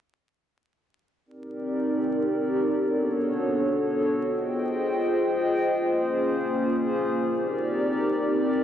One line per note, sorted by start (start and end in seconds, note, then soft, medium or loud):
1.26 2.36 C4 medium
1.26 2.36 D#4 medium
1.26 2.36 G4 medium
1.26 2.36 A#4 medium
1.26 2.36 D5 medium
2.75 3.85 B3 medium
2.75 3.85 D4 medium
2.75 3.85 F#4 medium
2.75 3.85 A4 medium
2.75 3.85 C#5 medium
4.24 5.34 F4 medium
4.24 5.34 G#4 medium
4.24 5.34 C5 medium
4.24 5.34 D#5 medium
4.24 5.34 G5 medium
5.74 6.75 A#3 medium
5.74 6.75 C#4 medium
5.74 6.75 F4 medium
5.74 6.75 G#4 medium
5.74 6.75 C5 medium
7.23 8.33 C4 medium
7.23 8.33 D#4 medium
7.23 8.33 G4 medium
7.23 8.33 A#4 medium
7.23 8.33 D5 loud